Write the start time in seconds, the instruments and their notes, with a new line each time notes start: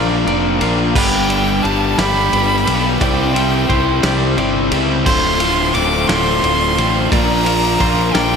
Already playing: fingered electric bass A#1, clean electric guitar A#2 F4 A#4 D5, distorted electric guitar A#2 F3, overdriven electric guitar F3 A#3 D4 F4 A#4, ambient pad A#4 F5 G5 D6, violin F5
0.25 fingered electric bass F1, overdriven electric guitar A#3 D4 F4 A#4, clean electric guitar D5, ride
0.60 fingered electric bass A#1, overdriven electric guitar A#3 D4 F4 A#4, ride
0.94 fingered electric bass G1, overdriven electric guitar G2 D3 G3 B3 D4, ambient pad B4, clean electric guitar B4, violin G5, kick, crash
0.98 overdriven electric guitar G4
1.28 overdriven electric guitar G3 B3 D4 G4, ride
1.63 fingered electric bass G1, overdriven electric guitar G3 B3 D4 G4, violin A5, ride
1.98 fingered electric bass G1, distorted electric guitar G2 D3, overdriven electric guitar G3 B3 D4 G4, clean electric guitar D5, violin B5, snare, ride
2.32 fingered electric bass G1, overdriven electric guitar G3 B3 D4 G4, ride
2.65 fingered electric bass B1, overdriven electric guitar G3 B3 D4 G4, ride
2.99 fingered electric bass C2, overdriven electric guitar C3 G3 C4 E4 G4 C5, ambient pad C5 A5 E6, clean electric guitar D5, violin G5, kick, ride
3.33 overdriven electric guitar C4 E4 G4 C5, ride
3.67 fingered electric bass C2, overdriven electric guitar C4 E4 G4 C5, clean electric guitar C5, kick, ride
4.02 fingered electric bass C2, distorted electric guitar C3 G3, overdriven electric guitar C4 E4 G4 C5, clean electric guitar D5, snare, ride
4.37 fingered electric bass G1, overdriven electric guitar C4 E4 G4 C5, clean electric guitar D5, ride
4.71 fingered electric bass C#2, overdriven electric guitar C4 E4 G4 C5, ride
5.04 fingered electric bass D1, overdriven electric guitar D2 A2 D3 A3 C4 F4, clean electric guitar C5, ambient pad F5 A5 D6, violin C6, kick, crash
5.40 overdriven electric guitar D3 A3 C4 F4, ride
5.74 fingered electric bass D1, overdriven electric guitar D3 A3 C4 F4, violin D6, ride
6.07 fingered electric bass D1, distorted electric guitar D2 A2, overdriven electric guitar D3 A3 C4 F4, clean electric guitar D5, violin C6, snare, ride
6.41 fingered electric bass D1, overdriven electric guitar D3 A3 C4 F4, ride
6.75 fingered electric bass A1, overdriven electric guitar D3 A3 C4 F4, ride
7.10 fingered electric bass A#1, overdriven electric guitar A#2 F3 A#3 D4 F4 A#4, ambient pad A#4 G5, clean electric guitar D5, violin A#5, kick, ride
7.45 overdriven electric guitar A#3 D4 F4 A#4, ride
7.79 fingered electric bass A#1, overdriven electric guitar A#3 D4 F4 A#4, clean electric guitar C5, kick, ride
8.13 fingered electric bass A#1, distorted electric guitar A#2 F3, overdriven electric guitar D4 F4 A#4, clean electric guitar D5, violin G5, snare, ride
8.17 overdriven electric guitar A#3